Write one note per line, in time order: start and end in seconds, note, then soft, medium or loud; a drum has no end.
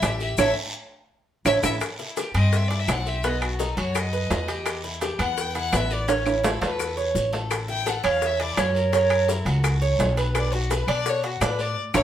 0.00 0.36 A1 medium
0.00 0.37 G4 medium
0.00 0.18 E5 medium
0.00 high bongo soft
0.00 low bongo medium
0.00 high timbale medium
0.00 low timbale medium
0.00 short guiro medium
0.00 claves medium
0.00 maracas medium
0.20 0.38 E5 medium
0.20 high bongo soft
0.20 short guiro medium
0.20 maracas soft
0.37 0.51 A1 medium
0.37 0.50 C#4 loud
0.37 0.50 E4 loud
0.37 0.50 A4 medium
0.37 0.50 E5 medium
0.37 low bongo medium
0.37 high timbale medium
0.37 long guiro loud
0.37 claves medium
0.37 maracas medium
1.45 1.59 A1 medium
1.45 1.57 C#4 medium
1.45 1.57 E4 medium
1.45 1.57 A4 medium
1.45 1.58 E5 medium
1.45 low bongo loud
1.45 high timbale loud
1.45 long guiro medium
1.45 claves medium
1.45 maracas medium
1.63 1.76 A1 medium
1.63 1.75 C#4 medium
1.63 1.75 E4 medium
1.63 1.75 A4 medium
1.63 1.76 E5 medium
1.63 low bongo medium
1.63 high timbale medium
1.63 long guiro medium
1.63 claves loud
1.63 maracas loud
1.81 high bongo medium
1.81 high timbale medium
1.81 long guiro medium
1.81 claves medium
1.81 maracas medium
1.99 2.16 E4 medium
1.99 high bongo soft
1.99 maracas soft
2.17 2.34 G4 medium
2.17 high bongo medium
2.17 high timbale medium
2.17 low timbale medium
2.17 short guiro medium
2.17 maracas medium
2.34 2.84 G2 medium
2.34 2.69 C4 medium
2.34 2.58 D#5 medium
2.34 high timbale medium
2.34 short guiro medium
2.34 claves medium
2.34 maracas soft
2.52 2.69 E5 medium
2.52 high bongo medium
2.52 long guiro medium
2.52 maracas medium
2.68 2.88 E4 medium
2.68 2.81 D5 medium
2.68 high bongo soft
2.68 high timbale medium
2.68 maracas soft
2.79 2.93 E5 medium
2.88 3.71 B1 medium
2.88 3.23 C4 medium
2.88 high bongo soft
2.88 low bongo medium
2.88 high timbale medium
2.88 low timbale medium
2.88 short guiro medium
2.88 claves medium
2.88 maracas medium
2.92 3.09 F#5 medium
3.06 3.29 E5 medium
3.06 high bongo soft
3.06 short guiro medium
3.06 maracas soft
3.23 3.58 B3 medium
3.23 high bongo medium
3.23 high timbale medium
3.23 long guiro medium
3.23 maracas medium
3.28 3.43 D#5 medium
3.42 3.65 F#4 medium
3.42 high bongo soft
3.42 high timbale medium
3.42 claves medium
3.42 maracas soft
3.59 3.77 D#4 medium
3.59 high bongo medium
3.59 low timbale medium
3.59 short guiro medium
3.59 maracas medium
3.63 3.79 A4 medium
3.77 4.27 F#2 medium
3.77 4.12 F#4 medium
3.77 4.00 C#5 medium
3.77 high timbale medium
3.77 short guiro medium
3.77 maracas soft
3.95 high bongo medium
3.95 high timbale medium
3.95 long guiro medium
3.95 claves medium
3.95 maracas medium
3.99 4.68 D#5 medium
4.13 4.47 B4 medium
4.13 high bongo soft
4.13 maracas soft
4.30 5.14 E2 medium
4.30 high bongo soft
4.30 low bongo medium
4.30 high timbale medium
4.30 low timbale medium
4.30 short guiro medium
4.30 maracas medium
4.48 4.83 G4 medium
4.48 high bongo soft
4.48 high timbale medium
4.48 short guiro medium
4.48 maracas soft
4.65 high bongo medium
4.65 high timbale medium
4.65 long guiro medium
4.65 claves medium
4.65 maracas medium
4.84 5.01 E4 medium
4.84 high bongo soft
4.84 maracas soft
5.01 5.19 G4 medium
5.01 high bongo medium
5.01 high timbale medium
5.01 low timbale medium
5.01 short guiro medium
5.01 maracas medium
5.19 5.69 E2 medium
5.19 5.54 B3 medium
5.19 5.43 F#5 medium
5.19 high timbale medium
5.19 short guiro medium
5.19 claves medium
5.19 maracas soft
5.37 high bongo medium
5.37 long guiro medium
5.37 maracas medium
5.41 5.56 G5 medium
5.55 5.72 E4 medium
5.55 5.78 F#5 loud
5.55 high bongo soft
5.55 high timbale medium
5.55 maracas soft
5.72 6.56 A1 medium
5.72 6.07 B3 medium
5.72 high bongo soft
5.72 low bongo medium
5.72 high timbale medium
5.72 low timbale medium
5.72 short guiro medium
5.72 claves medium
5.72 maracas medium
5.77 5.94 E5 medium
5.90 6.14 D5 medium
5.90 high bongo soft
5.90 short guiro medium
5.90 maracas soft
6.08 6.43 C#4 medium
6.08 high bongo medium
6.08 high timbale medium
6.08 long guiro medium
6.08 maracas medium
6.12 6.28 C#5 medium
6.26 6.50 E4 soft
6.26 high bongo soft
6.26 high timbale medium
6.26 claves medium
6.26 maracas soft
6.44 6.61 E4 medium
6.44 high bongo medium
6.44 low timbale medium
6.44 short guiro medium
6.44 maracas medium
6.48 6.64 A4 medium
6.61 7.11 E2 medium
6.61 6.96 A4 medium
6.61 6.96 B4 medium
6.61 low timbale loud
6.61 short guiro medium
6.61 maracas soft
6.79 high bongo medium
6.79 long guiro medium
6.79 claves medium
6.79 maracas medium
6.97 7.32 C#5 medium
6.97 high bongo soft
6.97 maracas soft
7.15 7.98 A1 medium
7.15 high bongo soft
7.15 low bongo medium
7.15 short guiro medium
7.15 maracas medium
7.33 7.67 A4 medium
7.33 high bongo soft
7.33 low timbale medium
7.33 short guiro medium
7.33 maracas soft
7.51 high bongo medium
7.51 high timbale medium
7.51 long guiro medium
7.51 claves medium
7.51 maracas medium
7.68 7.86 E4 medium
7.68 7.92 G5 medium
7.68 high bongo soft
7.68 maracas soft
7.86 8.03 A4 medium
7.86 high bongo medium
7.86 high timbale medium
7.86 low timbale medium
7.86 short guiro medium
7.86 maracas medium
7.90 8.06 F#5 medium
8.04 8.53 E2 medium
8.04 8.38 C#4 medium
8.04 8.28 F5 medium
8.04 high timbale loud
8.04 short guiro medium
8.04 claves medium
8.04 maracas soft
8.21 high bongo medium
8.21 long guiro medium
8.21 maracas medium
8.26 8.44 E5 medium
8.39 8.57 E4 medium
8.39 8.62 D5 medium
8.39 high bongo soft
8.39 high timbale medium
8.39 maracas soft
8.57 9.40 F#2 medium
8.57 8.92 C#4 medium
8.57 8.77 C#5 medium
8.57 high bongo soft
8.57 low bongo medium
8.57 high timbale loud
8.57 low timbale medium
8.57 short guiro medium
8.57 claves medium
8.57 maracas medium
8.75 9.61 A#4 medium
8.75 high bongo soft
8.75 short guiro medium
8.75 maracas soft
8.93 9.27 C#4 medium
8.93 high bongo medium
8.93 high timbale medium
8.93 long guiro medium
8.93 maracas medium
9.10 high bongo soft
9.10 high timbale medium
9.10 claves medium
9.10 maracas soft
9.28 9.46 E4 medium
9.28 high bongo medium
9.28 low timbale medium
9.28 short guiro medium
9.28 maracas medium
9.45 9.95 C#2 medium
9.45 9.80 F#4 medium
9.45 high timbale medium
9.45 short guiro medium
9.45 maracas soft
9.64 high bongo medium
9.64 high timbale medium
9.64 long guiro medium
9.64 claves medium
9.64 maracas medium
9.82 10.16 C#5 medium
9.82 high bongo soft
9.82 maracas soft
9.99 10.82 B1 medium
9.99 high bongo soft
9.99 low bongo medium
9.99 high timbale medium
9.99 low timbale medium
9.99 short guiro medium
9.99 maracas medium
10.17 10.52 B4 medium
10.17 high bongo soft
10.17 high timbale medium
10.17 short guiro medium
10.17 maracas soft
10.35 10.56 D5 medium
10.35 high bongo medium
10.35 high timbale medium
10.35 long guiro medium
10.35 claves medium
10.35 maracas medium
10.53 10.70 F#4 medium
10.53 10.76 F#4 medium
10.53 high bongo soft
10.53 maracas soft
10.71 10.88 B4 medium
10.71 10.92 B4 medium
10.71 high bongo medium
10.71 high timbale medium
10.71 low timbale medium
10.71 short guiro medium
10.71 maracas medium
10.87 11.37 B2 medium
10.87 11.22 D4 medium
10.87 11.11 D5 loud
10.87 high timbale medium
10.87 short guiro medium
10.87 claves medium
10.87 maracas soft
11.06 11.25 C#5 medium
11.06 high bongo medium
11.06 long guiro medium
11.06 maracas medium
11.24 11.41 F#4 medium
11.24 11.46 F#4 soft
11.24 high bongo soft
11.24 high timbale medium
11.24 maracas soft
11.41 11.74 A2 medium
11.41 11.76 D4 medium
11.41 11.62 B4 medium
11.41 high bongo soft
11.41 low bongo medium
11.41 high timbale medium
11.41 low timbale medium
11.41 short guiro medium
11.41 claves medium
11.41 maracas medium
11.59 11.78 D5 loud
11.59 high bongo soft
11.59 short guiro medium
11.59 maracas soft
11.94 12.03 A1 loud
11.94 12.03 C#4 medium
11.94 12.03 E4 medium
11.94 12.03 A4 medium
11.94 12.03 C#5 medium
11.94 low bongo loud
11.94 high timbale medium
11.94 long guiro loud
11.94 claves medium
11.94 maracas loud